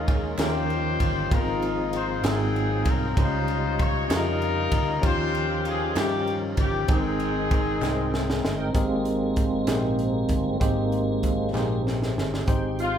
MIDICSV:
0, 0, Header, 1, 8, 480
1, 0, Start_track
1, 0, Key_signature, -4, "major"
1, 0, Tempo, 620476
1, 1017, Time_signature, 6, 3, 24, 8
1, 10044, End_track
2, 0, Start_track
2, 0, Title_t, "Horn section"
2, 0, Program_c, 0, 61
2, 0, Note_on_c, 0, 56, 63
2, 0, Note_on_c, 0, 61, 66
2, 0, Note_on_c, 0, 65, 83
2, 273, Note_off_c, 0, 56, 0
2, 274, Note_off_c, 0, 61, 0
2, 281, Note_off_c, 0, 65, 0
2, 308, Note_on_c, 0, 67, 72
2, 310, Note_on_c, 0, 65, 72
2, 326, Note_on_c, 0, 72, 105
2, 991, Note_off_c, 0, 67, 0
2, 992, Note_off_c, 0, 65, 0
2, 1021, Note_on_c, 0, 63, 70
2, 1022, Note_on_c, 0, 65, 74
2, 1030, Note_off_c, 0, 72, 0
2, 1035, Note_on_c, 0, 70, 98
2, 1297, Note_off_c, 0, 70, 0
2, 1508, Note_on_c, 0, 72, 94
2, 1706, Note_off_c, 0, 63, 0
2, 1706, Note_off_c, 0, 65, 0
2, 1724, Note_off_c, 0, 72, 0
2, 1733, Note_on_c, 0, 63, 68
2, 1735, Note_on_c, 0, 60, 70
2, 1748, Note_on_c, 0, 68, 106
2, 2220, Note_off_c, 0, 68, 0
2, 2244, Note_on_c, 0, 70, 94
2, 2421, Note_off_c, 0, 63, 0
2, 2422, Note_off_c, 0, 60, 0
2, 2468, Note_off_c, 0, 70, 0
2, 2475, Note_on_c, 0, 63, 76
2, 2476, Note_on_c, 0, 65, 83
2, 2485, Note_on_c, 0, 72, 107
2, 2947, Note_off_c, 0, 72, 0
2, 2957, Note_on_c, 0, 73, 103
2, 3151, Note_off_c, 0, 63, 0
2, 3151, Note_off_c, 0, 65, 0
2, 3183, Note_off_c, 0, 73, 0
2, 3190, Note_on_c, 0, 63, 84
2, 3194, Note_on_c, 0, 65, 78
2, 3204, Note_on_c, 0, 70, 114
2, 3867, Note_off_c, 0, 63, 0
2, 3869, Note_off_c, 0, 65, 0
2, 3904, Note_on_c, 0, 67, 82
2, 3905, Note_off_c, 0, 70, 0
2, 3909, Note_on_c, 0, 65, 87
2, 3914, Note_on_c, 0, 72, 120
2, 4349, Note_off_c, 0, 72, 0
2, 4395, Note_on_c, 0, 68, 105
2, 4583, Note_off_c, 0, 67, 0
2, 4586, Note_off_c, 0, 65, 0
2, 4605, Note_off_c, 0, 68, 0
2, 4634, Note_on_c, 0, 67, 99
2, 4892, Note_off_c, 0, 67, 0
2, 5108, Note_on_c, 0, 67, 83
2, 5321, Note_off_c, 0, 67, 0
2, 5354, Note_on_c, 0, 60, 75
2, 5364, Note_on_c, 0, 63, 70
2, 5364, Note_on_c, 0, 68, 104
2, 6508, Note_off_c, 0, 60, 0
2, 6513, Note_off_c, 0, 63, 0
2, 6544, Note_off_c, 0, 68, 0
2, 9917, Note_on_c, 0, 65, 93
2, 10044, Note_off_c, 0, 65, 0
2, 10044, End_track
3, 0, Start_track
3, 0, Title_t, "Tenor saxophone"
3, 0, Program_c, 1, 66
3, 9903, Note_on_c, 1, 65, 90
3, 10044, Note_off_c, 1, 65, 0
3, 10044, End_track
4, 0, Start_track
4, 0, Title_t, "Tine electric piano"
4, 0, Program_c, 2, 4
4, 0, Control_c, 2, 64, 127
4, 0, Note_on_c, 2, 51, 62
4, 0, Note_on_c, 2, 58, 77
4, 0, Note_on_c, 2, 61, 69
4, 0, Note_on_c, 2, 63, 63
4, 0, Note_on_c, 2, 68, 75
4, 0, Note_on_c, 2, 70, 80
4, 262, Note_off_c, 2, 51, 0
4, 296, Note_off_c, 2, 61, 0
4, 296, Note_on_c, 2, 61, 75
4, 298, Note_off_c, 2, 63, 0
4, 298, Note_on_c, 2, 63, 65
4, 303, Note_on_c, 2, 65, 63
4, 307, Note_on_c, 2, 67, 60
4, 308, Control_c, 2, 64, 0
4, 309, Note_off_c, 2, 68, 0
4, 309, Note_on_c, 2, 51, 67
4, 310, Note_off_c, 2, 70, 0
4, 310, Note_on_c, 2, 70, 80
4, 314, Note_off_c, 2, 58, 0
4, 440, Control_c, 2, 64, 127
4, 790, Note_off_c, 2, 61, 0
4, 791, Note_off_c, 2, 63, 0
4, 793, Note_off_c, 2, 65, 0
4, 795, Note_off_c, 2, 67, 0
4, 797, Note_off_c, 2, 70, 0
4, 991, Note_off_c, 2, 51, 0
4, 1016, Note_on_c, 2, 65, 69
4, 1018, Note_on_c, 2, 59, 57
4, 1020, Note_on_c, 2, 44, 59
4, 1020, Note_on_c, 2, 63, 64
4, 1020, Note_on_c, 2, 68, 75
4, 1028, Control_c, 2, 64, 0
4, 1028, Note_on_c, 2, 70, 72
4, 1065, Note_on_c, 2, 60, 80
4, 1067, Note_off_c, 2, 59, 0
4, 1171, Control_c, 2, 64, 127
4, 1509, Note_off_c, 2, 65, 0
4, 1510, Note_off_c, 2, 63, 0
4, 1511, Note_off_c, 2, 68, 0
4, 1515, Note_off_c, 2, 70, 0
4, 1533, Note_off_c, 2, 60, 0
4, 1705, Note_off_c, 2, 44, 0
4, 1727, Note_on_c, 2, 65, 67
4, 1729, Note_on_c, 2, 44, 72
4, 1729, Note_on_c, 2, 60, 73
4, 1730, Note_on_c, 2, 66, 68
4, 1736, Note_on_c, 2, 68, 67
4, 1743, Note_on_c, 2, 70, 85
4, 1744, Control_c, 2, 64, 0
4, 1855, Control_c, 2, 64, 127
4, 2223, Note_off_c, 2, 65, 0
4, 2224, Note_off_c, 2, 60, 0
4, 2224, Note_off_c, 2, 66, 0
4, 2228, Note_off_c, 2, 68, 0
4, 2231, Note_off_c, 2, 70, 0
4, 2419, Note_off_c, 2, 44, 0
4, 2455, Note_on_c, 2, 61, 79
4, 2457, Note_on_c, 2, 63, 69
4, 2459, Note_on_c, 2, 65, 70
4, 2463, Note_on_c, 2, 49, 59
4, 2464, Control_c, 2, 64, 0
4, 2464, Note_on_c, 2, 67, 72
4, 2465, Note_on_c, 2, 72, 91
4, 2586, Control_c, 2, 64, 127
4, 2946, Note_off_c, 2, 61, 0
4, 2947, Note_off_c, 2, 63, 0
4, 2948, Note_off_c, 2, 65, 0
4, 2950, Note_off_c, 2, 67, 0
4, 2951, Note_off_c, 2, 72, 0
4, 3145, Note_off_c, 2, 49, 0
4, 3154, Note_on_c, 2, 61, 67
4, 3160, Note_on_c, 2, 65, 64
4, 3164, Note_on_c, 2, 63, 69
4, 3166, Note_on_c, 2, 67, 63
4, 3171, Note_on_c, 2, 75, 75
4, 3654, Note_off_c, 2, 61, 0
4, 3657, Note_off_c, 2, 65, 0
4, 3659, Note_off_c, 2, 63, 0
4, 3660, Note_off_c, 2, 67, 0
4, 3663, Note_off_c, 2, 75, 0
4, 3876, Note_on_c, 2, 63, 72
4, 3879, Note_on_c, 2, 51, 61
4, 3879, Note_on_c, 2, 61, 77
4, 3884, Note_on_c, 2, 67, 72
4, 3885, Note_on_c, 2, 65, 75
4, 3888, Note_on_c, 2, 72, 81
4, 3900, Control_c, 2, 64, 0
4, 4051, Control_c, 2, 64, 127
4, 4375, Note_off_c, 2, 63, 0
4, 4376, Note_off_c, 2, 61, 0
4, 4379, Note_off_c, 2, 65, 0
4, 4379, Note_off_c, 2, 67, 0
4, 4380, Note_off_c, 2, 72, 0
4, 4571, Note_off_c, 2, 51, 0
4, 4602, Note_on_c, 2, 61, 75
4, 4603, Note_on_c, 2, 63, 63
4, 4612, Note_on_c, 2, 65, 68
4, 4612, Note_on_c, 2, 67, 68
4, 4617, Note_on_c, 2, 73, 83
4, 5097, Note_off_c, 2, 61, 0
4, 5097, Note_off_c, 2, 63, 0
4, 5102, Note_off_c, 2, 65, 0
4, 5102, Note_off_c, 2, 67, 0
4, 5104, Note_off_c, 2, 73, 0
4, 5321, Note_on_c, 2, 60, 78
4, 5328, Note_on_c, 2, 44, 61
4, 5329, Note_on_c, 2, 79, 70
4, 5330, Note_on_c, 2, 63, 78
4, 5334, Control_c, 2, 64, 0
4, 5334, Note_on_c, 2, 68, 75
4, 5335, Note_on_c, 2, 69, 68
4, 5380, Note_off_c, 2, 69, 0
4, 5385, Note_on_c, 2, 70, 81
4, 5490, Control_c, 2, 64, 127
4, 5817, Note_off_c, 2, 60, 0
4, 5821, Note_off_c, 2, 63, 0
4, 5821, Note_off_c, 2, 79, 0
4, 5823, Note_off_c, 2, 68, 0
4, 5848, Note_off_c, 2, 70, 0
4, 6015, Note_off_c, 2, 44, 0
4, 6047, Note_on_c, 2, 60, 75
4, 6048, Note_on_c, 2, 63, 74
4, 6051, Note_on_c, 2, 68, 73
4, 6051, Note_on_c, 2, 79, 72
4, 6055, Note_on_c, 2, 70, 73
4, 6100, Note_off_c, 2, 70, 0
4, 6103, Note_on_c, 2, 72, 87
4, 6539, Note_off_c, 2, 60, 0
4, 6540, Note_off_c, 2, 63, 0
4, 6542, Note_off_c, 2, 68, 0
4, 6542, Note_off_c, 2, 79, 0
4, 6568, Note_off_c, 2, 72, 0
4, 6764, Note_on_c, 2, 60, 79
4, 6767, Note_on_c, 2, 67, 80
4, 6769, Note_on_c, 2, 44, 57
4, 6769, Note_on_c, 2, 63, 67
4, 6771, Note_on_c, 2, 68, 79
4, 6774, Control_c, 2, 64, 0
4, 6774, Note_on_c, 2, 70, 86
4, 6907, Control_c, 2, 64, 127
4, 7259, Note_off_c, 2, 60, 0
4, 7260, Note_off_c, 2, 67, 0
4, 7261, Note_off_c, 2, 63, 0
4, 7262, Note_off_c, 2, 68, 0
4, 7264, Note_off_c, 2, 70, 0
4, 7457, Note_off_c, 2, 44, 0
4, 7483, Note_on_c, 2, 60, 74
4, 7486, Note_on_c, 2, 63, 62
4, 7488, Note_on_c, 2, 67, 73
4, 7492, Note_on_c, 2, 68, 67
4, 7493, Note_on_c, 2, 70, 62
4, 7539, Note_off_c, 2, 70, 0
4, 7545, Note_on_c, 2, 72, 89
4, 7979, Note_off_c, 2, 60, 0
4, 7981, Note_off_c, 2, 63, 0
4, 7982, Note_off_c, 2, 67, 0
4, 7984, Note_off_c, 2, 68, 0
4, 8010, Note_off_c, 2, 72, 0
4, 8201, Note_on_c, 2, 60, 78
4, 8203, Note_on_c, 2, 63, 71
4, 8208, Note_on_c, 2, 44, 63
4, 8208, Note_on_c, 2, 67, 81
4, 8210, Note_on_c, 2, 68, 64
4, 8213, Note_on_c, 2, 72, 89
4, 8700, Note_off_c, 2, 60, 0
4, 8701, Note_off_c, 2, 63, 0
4, 8704, Note_off_c, 2, 67, 0
4, 8704, Note_off_c, 2, 68, 0
4, 8706, Note_off_c, 2, 72, 0
4, 8900, Note_off_c, 2, 44, 0
4, 8924, Note_on_c, 2, 60, 72
4, 8924, Note_on_c, 2, 63, 69
4, 8927, Note_on_c, 2, 67, 73
4, 8931, Note_on_c, 2, 68, 70
4, 8935, Note_on_c, 2, 72, 78
4, 9423, Note_off_c, 2, 60, 0
4, 9423, Note_off_c, 2, 63, 0
4, 9425, Note_off_c, 2, 67, 0
4, 9426, Note_off_c, 2, 68, 0
4, 9429, Note_off_c, 2, 72, 0
4, 9641, Note_on_c, 2, 60, 65
4, 9648, Note_on_c, 2, 56, 57
4, 9649, Note_on_c, 2, 63, 73
4, 9651, Note_on_c, 2, 67, 70
4, 9653, Note_on_c, 2, 68, 62
4, 9656, Note_on_c, 2, 72, 75
4, 9663, Control_c, 2, 64, 0
4, 9801, Control_c, 2, 64, 127
4, 10044, Note_off_c, 2, 56, 0
4, 10044, Note_off_c, 2, 60, 0
4, 10044, Note_off_c, 2, 63, 0
4, 10044, Note_off_c, 2, 67, 0
4, 10044, Note_off_c, 2, 68, 0
4, 10044, Note_off_c, 2, 72, 0
4, 10044, End_track
5, 0, Start_track
5, 0, Title_t, "Tonewheel organ"
5, 0, Program_c, 3, 16
5, 0, Note_on_c, 3, 56, 68
5, 0, Note_on_c, 3, 58, 64
5, 0, Note_on_c, 3, 61, 61
5, 0, Note_on_c, 3, 63, 59
5, 0, Note_on_c, 3, 70, 73
5, 290, Note_off_c, 3, 58, 0
5, 291, Note_off_c, 3, 61, 0
5, 291, Note_off_c, 3, 63, 0
5, 300, Note_on_c, 3, 58, 55
5, 300, Note_on_c, 3, 61, 59
5, 300, Note_on_c, 3, 63, 59
5, 301, Note_on_c, 3, 53, 65
5, 305, Note_off_c, 3, 70, 0
5, 309, Note_off_c, 3, 56, 0
5, 310, Note_on_c, 3, 67, 69
5, 1017, Note_off_c, 3, 58, 0
5, 1017, Note_off_c, 3, 61, 0
5, 1018, Note_off_c, 3, 53, 0
5, 1018, Note_off_c, 3, 63, 0
5, 1022, Note_off_c, 3, 67, 0
5, 1025, Note_on_c, 3, 68, 70
5, 1030, Note_on_c, 3, 60, 61
5, 1030, Note_on_c, 3, 63, 63
5, 1031, Note_on_c, 3, 58, 61
5, 1033, Note_on_c, 3, 53, 67
5, 1723, Note_off_c, 3, 58, 0
5, 1724, Note_off_c, 3, 60, 0
5, 1725, Note_off_c, 3, 68, 0
5, 1731, Note_on_c, 3, 54, 64
5, 1732, Note_on_c, 3, 58, 62
5, 1733, Note_on_c, 3, 60, 55
5, 1734, Note_on_c, 3, 68, 70
5, 1734, Note_on_c, 3, 77, 61
5, 1741, Note_off_c, 3, 63, 0
5, 1743, Note_off_c, 3, 53, 0
5, 2445, Note_on_c, 3, 63, 65
5, 2445, Note_on_c, 3, 65, 63
5, 2446, Note_on_c, 3, 55, 70
5, 2446, Note_on_c, 3, 61, 64
5, 2450, Note_off_c, 3, 54, 0
5, 2451, Note_off_c, 3, 58, 0
5, 2451, Note_on_c, 3, 75, 78
5, 2452, Note_off_c, 3, 60, 0
5, 2452, Note_off_c, 3, 68, 0
5, 2452, Note_off_c, 3, 77, 0
5, 3856, Note_off_c, 3, 55, 0
5, 3856, Note_off_c, 3, 61, 0
5, 3856, Note_off_c, 3, 63, 0
5, 3856, Note_off_c, 3, 65, 0
5, 3859, Note_off_c, 3, 75, 0
5, 3892, Note_on_c, 3, 70, 75
5, 3896, Note_on_c, 3, 53, 69
5, 3896, Note_on_c, 3, 65, 68
5, 3897, Note_on_c, 3, 61, 68
5, 3898, Note_on_c, 3, 63, 58
5, 5299, Note_off_c, 3, 70, 0
5, 5301, Note_off_c, 3, 53, 0
5, 5301, Note_off_c, 3, 61, 0
5, 5301, Note_off_c, 3, 65, 0
5, 5302, Note_off_c, 3, 63, 0
5, 5315, Note_on_c, 3, 79, 66
5, 5318, Note_on_c, 3, 70, 68
5, 5320, Note_on_c, 3, 56, 67
5, 5321, Note_on_c, 3, 63, 58
5, 5324, Note_on_c, 3, 59, 51
5, 5366, Note_on_c, 3, 60, 63
5, 5375, Note_off_c, 3, 59, 0
5, 6731, Note_off_c, 3, 79, 0
5, 6733, Note_off_c, 3, 56, 0
5, 6733, Note_off_c, 3, 70, 0
5, 6734, Note_off_c, 3, 63, 0
5, 6757, Note_off_c, 3, 60, 0
5, 6767, Note_on_c, 3, 56, 48
5, 6771, Note_on_c, 3, 58, 44
5, 6781, Note_on_c, 3, 60, 51
5, 8178, Note_off_c, 3, 56, 0
5, 8180, Note_off_c, 3, 58, 0
5, 8185, Note_off_c, 3, 60, 0
5, 8199, Note_on_c, 3, 56, 50
5, 8211, Note_on_c, 3, 58, 49
5, 8215, Note_on_c, 3, 60, 61
5, 8895, Note_off_c, 3, 56, 0
5, 8901, Note_off_c, 3, 58, 0
5, 8903, Note_off_c, 3, 60, 0
5, 8918, Note_on_c, 3, 56, 41
5, 8920, Note_on_c, 3, 58, 39
5, 8925, Note_on_c, 3, 60, 48
5, 9141, Note_off_c, 3, 56, 0
5, 9142, Note_off_c, 3, 58, 0
5, 9144, Note_off_c, 3, 60, 0
5, 9654, Note_on_c, 3, 72, 73
5, 9655, Note_on_c, 3, 56, 62
5, 9660, Note_on_c, 3, 63, 60
5, 9661, Note_on_c, 3, 79, 57
5, 10044, Note_off_c, 3, 56, 0
5, 10044, Note_off_c, 3, 63, 0
5, 10044, Note_off_c, 3, 72, 0
5, 10044, Note_off_c, 3, 79, 0
5, 10044, End_track
6, 0, Start_track
6, 0, Title_t, "French horn section"
6, 0, Program_c, 4, 60
6, 6769, Note_on_c, 4, 60, 54
6, 6771, Note_on_c, 4, 70, 68
6, 6772, Note_on_c, 4, 58, 51
6, 6773, Note_on_c, 4, 51, 66
6, 9627, Note_off_c, 4, 60, 0
6, 9628, Note_off_c, 4, 70, 0
6, 9629, Note_off_c, 4, 51, 0
6, 9629, Note_off_c, 4, 58, 0
6, 10044, End_track
7, 0, Start_track
7, 0, Title_t, "Fingered electric bass"
7, 0, Program_c, 5, 33
7, 0, Note_on_c, 5, 39, 92
7, 266, Note_off_c, 5, 39, 0
7, 294, Note_on_c, 5, 39, 91
7, 744, Note_off_c, 5, 39, 0
7, 775, Note_on_c, 5, 31, 85
7, 996, Note_off_c, 5, 31, 0
7, 1018, Note_on_c, 5, 32, 91
7, 1704, Note_off_c, 5, 32, 0
7, 1730, Note_on_c, 5, 32, 87
7, 2180, Note_off_c, 5, 32, 0
7, 2210, Note_on_c, 5, 36, 90
7, 2431, Note_off_c, 5, 36, 0
7, 2453, Note_on_c, 5, 37, 106
7, 3140, Note_off_c, 5, 37, 0
7, 3169, Note_on_c, 5, 41, 91
7, 3617, Note_off_c, 5, 41, 0
7, 3649, Note_on_c, 5, 38, 90
7, 3869, Note_off_c, 5, 38, 0
7, 3893, Note_on_c, 5, 39, 97
7, 4578, Note_off_c, 5, 39, 0
7, 4607, Note_on_c, 5, 43, 92
7, 5055, Note_off_c, 5, 43, 0
7, 5088, Note_on_c, 5, 31, 92
7, 5308, Note_off_c, 5, 31, 0
7, 5326, Note_on_c, 5, 32, 104
7, 6014, Note_off_c, 5, 32, 0
7, 6045, Note_on_c, 5, 36, 86
7, 6494, Note_off_c, 5, 36, 0
7, 6533, Note_on_c, 5, 31, 78
7, 6750, Note_off_c, 5, 31, 0
7, 6764, Note_on_c, 5, 32, 92
7, 7455, Note_off_c, 5, 32, 0
7, 7483, Note_on_c, 5, 34, 85
7, 7935, Note_off_c, 5, 34, 0
7, 7963, Note_on_c, 5, 31, 74
7, 8186, Note_off_c, 5, 31, 0
7, 8207, Note_on_c, 5, 32, 89
7, 8899, Note_off_c, 5, 32, 0
7, 8924, Note_on_c, 5, 34, 79
7, 9378, Note_off_c, 5, 34, 0
7, 9412, Note_on_c, 5, 31, 74
7, 9634, Note_off_c, 5, 31, 0
7, 9653, Note_on_c, 5, 32, 80
7, 10044, Note_off_c, 5, 32, 0
7, 10044, End_track
8, 0, Start_track
8, 0, Title_t, "Drums"
8, 61, Note_on_c, 9, 53, 62
8, 62, Note_on_c, 9, 36, 96
8, 138, Note_off_c, 9, 53, 0
8, 139, Note_off_c, 9, 36, 0
8, 298, Note_on_c, 9, 39, 83
8, 298, Note_on_c, 9, 53, 82
8, 305, Note_on_c, 9, 38, 100
8, 375, Note_off_c, 9, 39, 0
8, 375, Note_off_c, 9, 53, 0
8, 383, Note_off_c, 9, 38, 0
8, 541, Note_on_c, 9, 53, 36
8, 619, Note_off_c, 9, 53, 0
8, 774, Note_on_c, 9, 53, 73
8, 775, Note_on_c, 9, 36, 77
8, 851, Note_off_c, 9, 53, 0
8, 853, Note_off_c, 9, 36, 0
8, 1017, Note_on_c, 9, 36, 109
8, 1019, Note_on_c, 9, 53, 70
8, 1094, Note_off_c, 9, 36, 0
8, 1096, Note_off_c, 9, 53, 0
8, 1256, Note_on_c, 9, 53, 48
8, 1334, Note_off_c, 9, 53, 0
8, 1492, Note_on_c, 9, 53, 58
8, 1570, Note_off_c, 9, 53, 0
8, 1731, Note_on_c, 9, 53, 79
8, 1738, Note_on_c, 9, 38, 104
8, 1738, Note_on_c, 9, 39, 87
8, 1808, Note_off_c, 9, 53, 0
8, 1815, Note_off_c, 9, 39, 0
8, 1816, Note_off_c, 9, 38, 0
8, 1981, Note_on_c, 9, 53, 40
8, 2058, Note_off_c, 9, 53, 0
8, 2207, Note_on_c, 9, 53, 72
8, 2210, Note_on_c, 9, 36, 93
8, 2284, Note_off_c, 9, 53, 0
8, 2288, Note_off_c, 9, 36, 0
8, 2452, Note_on_c, 9, 36, 102
8, 2453, Note_on_c, 9, 53, 70
8, 2530, Note_off_c, 9, 36, 0
8, 2530, Note_off_c, 9, 53, 0
8, 2691, Note_on_c, 9, 53, 47
8, 2768, Note_off_c, 9, 53, 0
8, 2934, Note_on_c, 9, 53, 61
8, 2936, Note_on_c, 9, 36, 97
8, 3012, Note_off_c, 9, 53, 0
8, 3013, Note_off_c, 9, 36, 0
8, 3172, Note_on_c, 9, 53, 82
8, 3179, Note_on_c, 9, 38, 102
8, 3180, Note_on_c, 9, 39, 89
8, 3249, Note_off_c, 9, 53, 0
8, 3257, Note_off_c, 9, 38, 0
8, 3257, Note_off_c, 9, 39, 0
8, 3417, Note_on_c, 9, 53, 42
8, 3494, Note_off_c, 9, 53, 0
8, 3647, Note_on_c, 9, 53, 81
8, 3650, Note_on_c, 9, 36, 93
8, 3725, Note_off_c, 9, 53, 0
8, 3727, Note_off_c, 9, 36, 0
8, 3891, Note_on_c, 9, 53, 73
8, 3893, Note_on_c, 9, 36, 103
8, 3968, Note_off_c, 9, 53, 0
8, 3970, Note_off_c, 9, 36, 0
8, 4136, Note_on_c, 9, 53, 45
8, 4213, Note_off_c, 9, 53, 0
8, 4372, Note_on_c, 9, 53, 57
8, 4450, Note_off_c, 9, 53, 0
8, 4610, Note_on_c, 9, 53, 86
8, 4615, Note_on_c, 9, 39, 92
8, 4617, Note_on_c, 9, 38, 98
8, 4687, Note_off_c, 9, 53, 0
8, 4692, Note_off_c, 9, 39, 0
8, 4694, Note_off_c, 9, 38, 0
8, 4853, Note_on_c, 9, 53, 43
8, 4931, Note_off_c, 9, 53, 0
8, 5083, Note_on_c, 9, 53, 76
8, 5087, Note_on_c, 9, 36, 86
8, 5161, Note_off_c, 9, 53, 0
8, 5164, Note_off_c, 9, 36, 0
8, 5323, Note_on_c, 9, 53, 68
8, 5328, Note_on_c, 9, 36, 123
8, 5401, Note_off_c, 9, 53, 0
8, 5405, Note_off_c, 9, 36, 0
8, 5567, Note_on_c, 9, 53, 44
8, 5644, Note_off_c, 9, 53, 0
8, 5810, Note_on_c, 9, 53, 61
8, 5811, Note_on_c, 9, 36, 106
8, 5887, Note_off_c, 9, 53, 0
8, 5888, Note_off_c, 9, 36, 0
8, 6051, Note_on_c, 9, 39, 84
8, 6060, Note_on_c, 9, 38, 64
8, 6129, Note_off_c, 9, 39, 0
8, 6137, Note_off_c, 9, 38, 0
8, 6296, Note_on_c, 9, 38, 73
8, 6374, Note_off_c, 9, 38, 0
8, 6418, Note_on_c, 9, 38, 86
8, 6496, Note_off_c, 9, 38, 0
8, 6534, Note_on_c, 9, 38, 97
8, 6611, Note_off_c, 9, 38, 0
8, 6765, Note_on_c, 9, 42, 76
8, 6766, Note_on_c, 9, 36, 93
8, 6842, Note_off_c, 9, 42, 0
8, 6843, Note_off_c, 9, 36, 0
8, 7004, Note_on_c, 9, 42, 47
8, 7081, Note_off_c, 9, 42, 0
8, 7244, Note_on_c, 9, 42, 63
8, 7248, Note_on_c, 9, 36, 87
8, 7321, Note_off_c, 9, 42, 0
8, 7326, Note_off_c, 9, 36, 0
8, 7481, Note_on_c, 9, 42, 83
8, 7489, Note_on_c, 9, 38, 90
8, 7490, Note_on_c, 9, 39, 82
8, 7559, Note_off_c, 9, 42, 0
8, 7566, Note_off_c, 9, 38, 0
8, 7568, Note_off_c, 9, 39, 0
8, 7726, Note_on_c, 9, 42, 46
8, 7804, Note_off_c, 9, 42, 0
8, 7958, Note_on_c, 9, 42, 73
8, 7963, Note_on_c, 9, 36, 78
8, 8036, Note_off_c, 9, 42, 0
8, 8041, Note_off_c, 9, 36, 0
8, 8208, Note_on_c, 9, 36, 99
8, 8208, Note_on_c, 9, 42, 77
8, 8285, Note_off_c, 9, 36, 0
8, 8285, Note_off_c, 9, 42, 0
8, 8450, Note_on_c, 9, 42, 45
8, 8527, Note_off_c, 9, 42, 0
8, 8689, Note_on_c, 9, 42, 63
8, 8693, Note_on_c, 9, 36, 77
8, 8766, Note_off_c, 9, 42, 0
8, 8770, Note_off_c, 9, 36, 0
8, 8935, Note_on_c, 9, 39, 64
8, 8942, Note_on_c, 9, 38, 45
8, 9012, Note_off_c, 9, 39, 0
8, 9019, Note_off_c, 9, 38, 0
8, 9183, Note_on_c, 9, 38, 62
8, 9260, Note_off_c, 9, 38, 0
8, 9303, Note_on_c, 9, 38, 64
8, 9380, Note_off_c, 9, 38, 0
8, 9423, Note_on_c, 9, 38, 79
8, 9501, Note_off_c, 9, 38, 0
8, 9545, Note_on_c, 9, 38, 69
8, 9622, Note_off_c, 9, 38, 0
8, 9651, Note_on_c, 9, 42, 69
8, 9653, Note_on_c, 9, 36, 92
8, 9728, Note_off_c, 9, 42, 0
8, 9730, Note_off_c, 9, 36, 0
8, 9893, Note_on_c, 9, 42, 45
8, 9970, Note_off_c, 9, 42, 0
8, 10044, End_track
0, 0, End_of_file